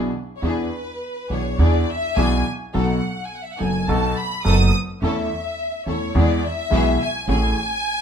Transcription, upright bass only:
0.42 E2
1.30 B1
1.59 E2
2.17 B1
2.75 B1
3.61 F#1
3.88 B1
4.46 F#1
5.02 E2
5.86 E2
6.15 E2
6.72 B1
7.28 A1

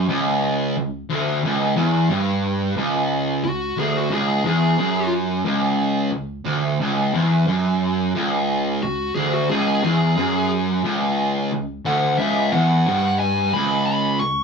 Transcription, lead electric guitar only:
3.44 F#4
3.79 G#4
3.97 F#4
4.13 G#4
4.47 G#4
8.83 F#4
9.15 G#4
9.33 F#4
9.49 G#4
9.84 G#4
11.86 F#5
12.18 E5
12.53 F#5
13.19 G#5
13.53 B5
13.87 B5
14.20 C#6

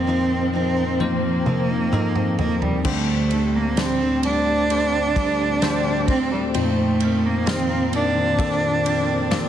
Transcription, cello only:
Already playing: C4
0.56 C4
1.02 A#3
2.40 A#3
2.63 G3
2.87 A3
3.56 A#3
3.79 C4
4.25 D4
6.10 C4
6.32 G3
6.55 A3
7.26 A#3
7.49 C4
7.95 D4

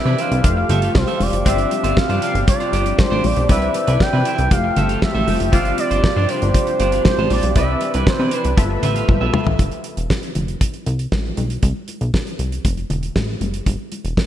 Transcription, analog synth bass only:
0.05 C3
0.31 C2
0.44 F1
0.69 G1
0.95 C2
1.20 F1
1.33 F#1
1.46 G1
1.84 G1
2.09 G2
2.34 G1
2.73 G1
3.11 A1
3.24 A#1
3.37 B1
3.49 C2
3.88 C2
4.13 C3
4.39 C2
4.51 F1
4.77 G1
5.15 A1
5.28 F1
5.40 F#1
5.53 G1
5.91 G1
6.16 G2
6.42 G1
6.80 G1
7.18 A1
7.31 A#1
7.43 B1
7.56 C2
7.94 C2
8.07 C3
8.19 C3
8.45 C2
8.57 G1
8.83 A1
9.08 G1
9.21 B1
9.46 A1
9.59 G1
9.97 E1
10.35 F1
10.86 C2
11.12 A1
11.37 B1
11.63 C2
12.01 B1
12.39 C2
12.65 F1
12.90 E1
13.16 A1
13.41 F#1
13.66 G1
14.04 E1

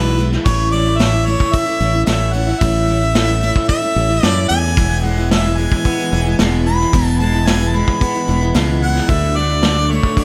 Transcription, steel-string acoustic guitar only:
Already playing: E2 B2 E3 G#3 B3 E4
0.17 E3 G#3 B3 E4
0.33 E3 G#3 B3 E4
0.45 A2 E3 A3 C#4 E4
0.73 E3 A3 C#4 E4
0.85 A3 C#4 E4
0.99 A2 E3 A3 C#4 E4
1.13 A3 C#4 E4
1.26 E3 A3 C#4 E4
1.66 A3 C#4 E4
1.80 E3 A3 C#4 E4
1.93 A3 C#4 E4
2.07 A2 E3 A3 C#4 E4
2.33 E3 A3 C#4 E4
2.47 A3 C#4 E4
2.61 A2 E3 A3 C#4 E4
2.87 E3 A3 C#4 E4
3.01 A3 C#4 E4
3.15 A2 E3 A3 C#4 E4
3.27 A3 C#4 E4
3.41 E3 A3 C#4 E4
3.82 A3 C#4 E4
3.96 E3 A3 C#4 E4
4.09 A3 C#4 E4
4.23 A2 E3 A3 C#4 E4
4.50 E3 A3 C#4 E4
4.77 E2 B2 E3 G#3 B3 E4
5.03 E3 G#3 B3 E4
5.17 E3 G#3 B3 E4
5.31 E2 B2 E3 G#3 B3 E4
5.45 E3 G#3 B3 E4
5.58 E3 G#3 B3 E4
5.99 E3 G#3 B3 E4
6.12 E3 G#3 B3 E4
6.25 E3 G#3 B3 E4
6.40 E2 B2 E3 G#3 B3 E4
6.66 E3 G#3 B3 E4
6.80 E3 G#3 B3 E4
6.93 E2 B2 E3 G#3 B3 E4
7.20 E3 G#3 B3 E4
7.33 E3 G#3 B3 E4
7.47 E2 B2 E3 G#3 B3 E4
7.61 E3 G#3 B3 E4
7.73 E3 G#3 B3 E4
8.14 E3 G#3 B3 E4
8.28 E3 G#3 B3 E4
8.41 E3 G#3 B3 E4
8.54 E2 B2 E3 G#3 B3 E4
8.82 E3 G#3 B3 E4
9.09 D3 A3 D4 F#4
9.37 D3 A3 D4 F#4
9.50 A3 D4 F#4
9.63 D3 A3 D4 F#4
9.78 A3 D4 F#4
9.92 D3 A3 D4 F#4

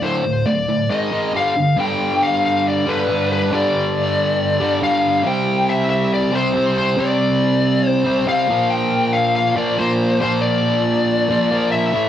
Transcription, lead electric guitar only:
0.02 C5
0.46 D5
0.90 D#5
1.36 F5
1.80 G5
2.23 F5
2.46 F5
2.68 D5
2.89 B4
3.33 B4
3.53 D5
4.84 F5
5.27 G5
5.69 E5
5.90 E5
6.14 D5
6.35 C5
6.78 C5
6.98 D5
7.88 C5
8.29 F5
8.70 G5
9.13 F5
9.36 F5
9.56 D5
9.79 C5
10.21 C5
10.41 D5
11.71 E5

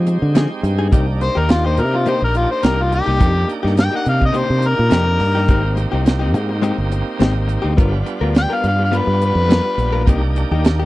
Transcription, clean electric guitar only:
0.07 muted clean electric guitar stroke
0.35 F3 C4 D#4 G#4
0.50 muted clean electric guitar stroke
0.63 muted clean electric guitar stroke
0.79 C4 D#4 G#4
0.92 C3 A#3 D#4 G4
1.08 muted clean electric guitar stroke
1.21 muted clean electric guitar stroke
1.35 A#3 D#4 G4
1.49 muted clean electric guitar stroke
1.65 A#3 D#4 G4
1.94 muted clean electric guitar stroke
2.06 C3 A#3 D#4 G4
2.22 muted clean electric guitar stroke
2.34 muted clean electric guitar stroke
2.63 C3 A#3 D#4 G4
2.79 muted clean electric guitar stroke
2.91 muted clean electric guitar stroke
3.06 A#3 D#4 G4
3.19 C3 A#3 D#4 G4
3.34 muted clean electric guitar stroke
3.48 muted clean electric guitar stroke
3.63 A#3 D#4 G4
3.76 muted clean electric guitar stroke
3.92 A#3 D#4 G4
4.21 muted clean electric guitar stroke
4.33 C3 A#3 D#4 G4
4.50 muted clean electric guitar stroke
4.62 muted clean electric guitar stroke
4.90 C3 A#3 D#4 G4
5.06 muted clean electric guitar stroke
5.20 muted clean electric guitar stroke
5.35 A#3 D#4 G4
5.48 G#3 C4 D#4 G4
5.64 muted clean electric guitar stroke
5.77 muted clean electric guitar stroke
5.92 C4 D#4 G4
6.05 muted clean electric guitar stroke
6.19 C4 D#4 G4
6.49 muted clean electric guitar stroke
6.62 G#3 C4 D#4 G4
6.78 muted clean electric guitar stroke
6.92 muted clean electric guitar stroke
7.20 G#3 C4 D#4 G4
7.35 muted clean electric guitar stroke
7.47 muted clean electric guitar stroke
7.62 C4 D#4 G4
7.77 G3 B3 F4 A#4
7.93 muted clean electric guitar stroke
8.05 muted clean electric guitar stroke
8.21 B3 F4 A#4
8.35 muted clean electric guitar stroke
8.50 B3 F4 A#4
8.79 muted clean electric guitar stroke
8.92 G3 B3 F4 A#4
9.22 muted clean electric guitar stroke
9.49 G3 B3 F4 A#4
9.65 muted clean electric guitar stroke
9.78 muted clean electric guitar stroke
9.93 B3 F4 A#4
10.07 C3 A#3 D#4 G4
10.23 muted clean electric guitar stroke
10.37 muted clean electric guitar stroke
10.52 A#3 D#4 G4
10.64 muted clean electric guitar stroke
10.79 D#4 G4

